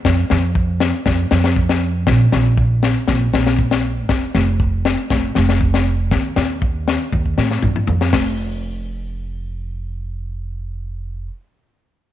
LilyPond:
<<
  \new Staff \with { instrumentName = "Upright bass" } { \clef bass \time 4/4 \key f \mixolydian \tempo 4 = 119 f,8 f,4. f,8 f,4. | bes,,8 bes,,4. bes,,8 bes,,4. | f,,8 f,,4. f,,8 f,,4. | ees,8 ees,4. ees,8 a,8 g,8 f,8 |
f,,1~ | f,,1 | }
  \new DrumStaff \with { instrumentName = "Drums" } \drummode { \time 4/4 <bd sn>8 sn8 bd8 sn8 <bd sn>8 sn16 sn16 bd16 sn8. | <bd sn>8 sn8 bd8 sn8 <bd sn>8 sn16 sn16 bd16 sn8. | <bd sn>8 sn8 bd8 sn8 <bd sn>8 sn16 sn16 bd16 sn8. | <bd sn>8 sn8 bd8 sn8 bd16 bd16 sn16 sn16 <bd toml>16 toml16 tomfh16 sn16 |
<hho bd sn>4 r4 r4 r4 | r4 r4 r4 r4 | }
>>